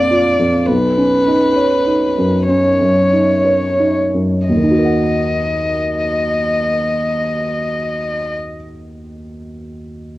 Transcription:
0.00 0.39 F2 soft
0.00 0.69 D4 soft
0.00 0.11 F4 soft
0.00 0.67 D5 medium
0.00 0.69 F5 soft
0.11 0.56 F4 soft
0.39 0.67 F2 soft
0.66 2.44 B1 soft
0.66 2.47 B4 medium
0.97 1.44 C#4 soft
1.28 1.74 D#4 soft
1.56 2.04 C#5 soft
1.87 2.36 D#4 soft
2.18 2.67 F#2 soft
2.49 2.99 C#4 soft
2.49 3.94 C#5 soft
2.80 3.32 F#2 soft
3.13 3.66 D#4 soft
3.45 4.00 C#5 soft
3.79 4.35 D#4 soft
4.14 4.49 F#2 soft
4.48 8.35 D#2 soft
4.48 8.34 D#5 soft
4.57 8.42 D#3 soft
4.63 8.49 D#4 soft
4.70 8.56 F#4 soft
4.77 8.63 A#4 soft
4.84 8.70 F#5 soft

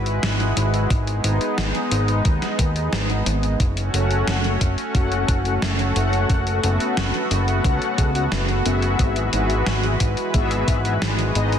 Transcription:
0.00 0.19 G#1 medium
0.00 3.56 G#3 medium
0.00 0.88 E4 medium
0.00 0.86 F#4 medium
0.00 0.88 B4 medium
0.06 closed hi-hat soft
0.23 0.53 G#1 loud
0.23 snare loud
0.23 closed hi-hat medium
0.40 closed hi-hat soft
0.57 0.87 G#1 medium
0.57 closed hi-hat medium
0.74 closed hi-hat soft
0.90 1.21 G#1 medium
0.90 3.58 B3 medium
0.90 3.58 D#4 medium
0.90 kick loud
0.90 closed hi-hat medium
1.07 closed hi-hat soft
1.24 1.39 G#1 medium
1.24 closed hi-hat medium
1.41 closed hi-hat soft
1.58 1.73 G#1 medium
1.58 snare loud
1.58 closed hi-hat medium
1.75 closed hi-hat soft
1.91 2.22 G#1 loud
1.91 closed hi-hat medium
2.08 closed hi-hat soft
2.25 2.40 D#2 medium
2.25 kick loud
2.25 closed hi-hat medium
2.42 snare soft
2.42 closed hi-hat soft
2.59 2.89 D#2 medium
2.59 kick loud
2.59 closed hi-hat medium
2.76 closed hi-hat soft
2.93 3.23 G#1 medium
2.93 snare loud
2.93 closed hi-hat medium
3.10 closed hi-hat soft
3.26 3.57 G#1 medium
3.26 closed hi-hat medium
3.43 closed hi-hat soft
3.60 3.90 F#1 loud
3.60 8.96 A3 medium
3.60 6.27 C#4 medium
3.60 11.59 F#4 medium
3.60 kick loud
3.60 closed hi-hat medium
3.77 closed hi-hat soft
3.94 4.24 F#1 medium
3.94 4.40 C#4 medium
3.94 4.40 F#4 medium
3.94 4.40 A4 medium
3.94 4.40 F#5 medium
3.94 closed hi-hat medium
4.11 closed hi-hat soft
4.27 4.58 F#1 loud
4.27 snare loud
4.27 closed hi-hat medium
4.44 4.53 C#4 medium
4.44 4.53 F#4 medium
4.44 4.53 A4 medium
4.44 4.53 F#5 medium
4.44 closed hi-hat soft
4.61 4.76 F#1 medium
4.61 kick medium
4.61 closed hi-hat medium
4.78 closed hi-hat soft
4.95 5.25 F#1 medium
4.95 5.41 C#4 medium
4.95 5.41 F#4 medium
4.95 5.41 A4 medium
4.95 5.41 F#5 medium
4.95 kick loud
4.95 closed hi-hat medium
5.12 closed hi-hat soft
5.28 5.59 F#1 medium
5.28 kick loud
5.28 closed hi-hat medium
5.45 5.54 C#4 medium
5.45 5.54 F#4 medium
5.45 5.54 A4 medium
5.45 5.54 F#5 medium
5.45 closed hi-hat soft
5.62 5.93 F#1 loud
5.62 snare loud
5.62 closed hi-hat medium
5.79 closed hi-hat soft
5.96 6.26 F#1 medium
5.96 6.59 C#4 medium
5.96 6.59 F#4 medium
5.96 6.59 A4 medium
5.96 6.59 F#5 loud
5.96 closed hi-hat medium
6.13 closed hi-hat soft
6.30 6.60 F#1 medium
6.30 8.97 B3 medium
6.30 kick loud
6.30 closed hi-hat medium
6.47 closed hi-hat soft
6.63 6.79 F#1 medium
6.63 7.10 C#4 medium
6.63 7.10 F#4 medium
6.63 7.10 A4 medium
6.63 7.10 F#5 medium
6.63 closed hi-hat medium
6.80 closed hi-hat soft
6.97 7.12 F#1 medium
6.97 snare loud
6.97 closed hi-hat medium
7.14 7.23 C#4 medium
7.14 7.23 F#4 medium
7.14 7.23 A4 medium
7.14 7.23 F#5 medium
7.14 closed hi-hat soft
7.31 7.61 F#1 loud
7.31 closed hi-hat medium
7.48 closed hi-hat soft
7.64 7.80 C#2 medium
7.64 8.11 C#4 medium
7.64 8.11 F#4 medium
7.64 8.11 A4 medium
7.64 8.11 F#5 loud
7.64 kick loud
7.64 closed hi-hat medium
7.82 closed hi-hat soft
7.98 8.28 C#2 medium
7.98 kick loud
7.98 closed hi-hat medium
8.15 8.24 C#4 medium
8.15 8.24 F#4 medium
8.15 8.24 A4 medium
8.15 8.24 F#5 medium
8.15 closed hi-hat soft
8.32 8.62 F#1 loud
8.32 snare loud
8.32 closed hi-hat medium
8.49 closed hi-hat soft
8.65 8.96 F#1 loud
8.65 9.29 B3 medium
8.65 9.29 F#4 medium
8.65 9.29 G#4 medium
8.65 9.29 E5 loud
8.65 closed hi-hat medium
8.82 closed hi-hat soft
8.99 9.30 G#1 medium
8.99 11.59 E3 medium
8.99 11.59 G#3 medium
8.99 11.59 B4 medium
8.99 kick loud
8.99 closed hi-hat medium
9.16 closed hi-hat soft
9.33 9.63 G#1 medium
9.33 9.80 B3 medium
9.33 9.80 F#4 medium
9.33 9.80 G#4 medium
9.33 9.80 E5 medium
9.33 closed hi-hat medium
9.50 closed hi-hat soft
9.66 9.97 G#1 medium
9.66 snare loud
9.66 closed hi-hat medium
9.83 9.92 B3 medium
9.83 9.92 F#4 medium
9.83 9.92 G#4 medium
9.83 9.92 E5 medium
9.83 closed hi-hat soft
10.00 10.16 G#1 medium
10.00 kick medium
10.00 closed hi-hat medium
10.17 closed hi-hat soft
10.34 10.64 G#1 medium
10.34 10.81 B3 medium
10.34 10.81 F#4 medium
10.34 10.81 G#4 medium
10.34 10.81 E5 loud
10.34 kick loud
10.34 closed hi-hat medium
10.51 closed hi-hat soft
10.68 10.98 G#1 medium
10.68 kick medium
10.68 closed hi-hat medium
10.85 10.94 B3 medium
10.85 10.94 F#4 medium
10.85 10.94 G#4 medium
10.85 10.94 E5 medium
10.85 closed hi-hat soft
11.02 11.32 G#1 loud
11.02 snare loud
11.02 closed hi-hat medium
11.19 closed hi-hat soft
11.35 11.59 G#1 loud
11.35 11.59 B3 medium
11.35 11.59 D#4 medium
11.35 11.59 G#4 medium
11.35 11.59 D#5 loud
11.35 closed hi-hat medium
11.52 closed hi-hat soft

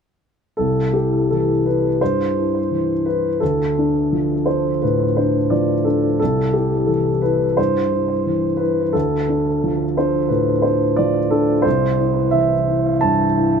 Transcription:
0.57 1.96 C2 soft
0.57 0.94 A4 medium
0.94 1.51 E4 soft
0.94 1.30 G4 soft
1.31 1.87 E3 soft
1.31 1.65 A4 soft
1.65 2.22 E4 soft
1.65 2.00 B4 soft
2.01 2.57 G2 soft
2.01 3.06 C5 medium
2.38 2.93 E4 soft
2.71 3.27 E3 soft
3.06 3.42 E4 soft
3.06 3.41 B4 soft
3.40 4.78 D2 soft
3.40 4.46 A4 medium
3.79 4.33 D4 soft
4.12 4.68 F3 soft
4.46 5.03 D4 soft
4.46 4.81 C5 soft
4.82 5.38 A2 soft
4.82 5.16 B4 soft
5.17 5.72 D4 soft
5.17 5.51 C5 soft
5.50 6.06 F3 soft
5.50 5.85 D5 medium
5.84 6.21 D4 soft
5.84 6.18 A4 soft
6.19 7.55 C2 soft
6.19 6.54 A4 medium
6.53 7.10 E4 soft
6.53 6.88 G4 soft
6.86 7.44 E3 soft
6.86 7.22 A4 soft
7.22 7.79 E4 soft
7.22 7.57 B4 medium
7.57 8.13 G2 soft
7.57 8.59 C5 medium
7.92 8.46 E4 soft
8.26 8.80 E3 soft
8.57 8.93 E4 soft
8.57 8.92 B4 medium
8.93 10.27 D2 soft
8.93 9.96 A4 medium
9.29 9.84 D4 soft
9.64 10.17 F3 soft
9.97 10.52 D4 soft
9.97 10.31 C5 medium
10.28 10.84 A2 soft
10.28 10.63 B4 soft
10.62 11.18 D4 soft
10.62 10.97 C5 soft
10.96 11.52 F3 soft
10.96 11.31 D5 medium
11.31 11.65 D4 soft
11.31 11.65 A4 medium
11.62 13.00 C2 soft
11.62 12.31 C5 medium
11.99 12.54 E4 soft
12.31 12.90 E3 soft
12.31 13.03 E5 medium
12.68 13.25 E4 soft
13.01 13.59 G2 soft
13.01 13.60 A5 medium
13.37 13.60 E4 soft

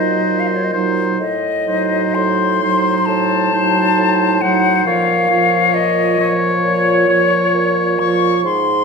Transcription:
0.00 0.18 A#2 soft
0.00 0.72 F#3 soft
0.00 0.56 D#4 soft
0.00 0.72 C5 soft
0.00 0.41 D#5 medium
0.29 1.09 A#2 soft
0.40 0.49 F5 soft
0.48 0.58 D#5 soft
0.56 0.66 C#5 soft
0.64 0.74 D#5 soft
0.73 1.19 F#3 soft
0.73 1.18 D#4 soft
0.73 1.18 C5 soft
1.19 2.05 A2 soft
1.19 2.16 D#5 medium
1.67 2.60 F#3 soft
1.67 2.60 D#4 soft
1.67 2.61 C5 soft
2.15 2.97 A2 medium
2.15 3.07 C6 medium
2.62 3.51 F#3 soft
2.62 3.51 D#4 soft
2.62 3.51 C5 soft
3.06 3.87 A2 medium
3.06 4.43 A5 medium
3.53 4.41 F#3 soft
3.53 4.41 D#4 soft
3.53 4.41 C5 soft
3.97 4.76 A2 medium
4.41 4.84 F#3 soft
4.41 4.86 D#4 soft
4.41 4.86 C5 soft
4.41 4.85 F#5 medium
4.85 5.63 A#2 medium
4.85 5.28 F3 soft
4.85 5.29 F4 soft
4.85 5.29 C#5 soft
4.85 5.76 F5 medium
5.30 6.17 F3 soft
5.30 6.17 F4 soft
5.30 6.17 C#5 soft
5.74 6.53 A#2 medium
5.74 6.34 D#5 medium
6.18 7.07 F3 soft
6.18 7.07 F4 soft
6.18 7.08 C#5 medium
6.63 7.43 A#2 medium
6.63 8.00 C#5 medium
7.09 7.97 F3 soft
7.09 7.84 F4 soft
7.09 7.98 C#5 soft
7.54 8.34 A#2 medium
7.99 8.44 F3 soft
7.99 8.44 F4 soft
7.99 8.44 C#5 soft
7.99 8.44 C#6 medium
8.44 8.84 G#2 medium
8.44 8.84 C6 medium

